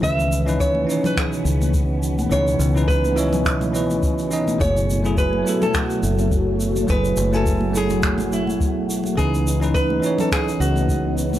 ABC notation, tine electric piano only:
X:1
M:4/4
L:1/16
Q:"Swing 16ths" 1/4=105
K:F#dor
V:1 name="Tine electric piano"
[D,E,CB]3 [E,CDB]3 [E,CDc]8- [E,CDc]2 | [E,CDB]3 [E,CDB]3 [E,Ccd]4 [E,CBd]4 [E,CDd]2 | [F,A,EG]3 [F,A,EG]3 [F,A,EA]8- [F,A,EA]2 | [F,A,EG]3 [F,A,Eg]3 [F,A,EG]8- [F,A,EG]2 |
[E,CDB]3 [E,CDB]3 [E,CDc]8- [E,CDc]2 |]